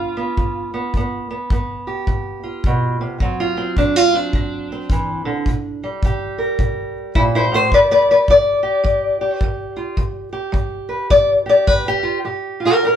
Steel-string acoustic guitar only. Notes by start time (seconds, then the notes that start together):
Already playing: G2 B3 F4
0.17 B3
0.38 G2
0.74 B3
0.97 G2 B3
1.31 B3
1.51 G2 B3
1.87 G4
2.08 G2
2.44 F4
2.66 B2
3.01 C3
3.20 D3 F#3 C4 D4
3.40 F4
3.57 C4
3.78 D3 D4
3.96 F4
4.14 C4 D4
4.35 D3
4.72 C4
4.91 E3
5.25 D3
5.49 C3
5.84 G3
6.05 C3 G4
6.38 A#4
6.60 C3
7.15 A#2 E4 C5
7.35 E4 C5
7.52 A2 C5
7.74 G3 B4 D5
7.91 B4 D5
8.11 B4 D5
8.30 G3 D5
8.63 G4
8.84 G3
9.21 G4
9.44 G3
9.77 F4
9.97 G3
10.33 G4
10.52 G3
10.89 B4
11.10 G3 D5
11.46 G4 D5
11.67 G3 B4
11.88 G4
12.03 F4
12.25 G2 G4
12.60 F4
12.65 G4 A#4
12.83 G2 G4 A#4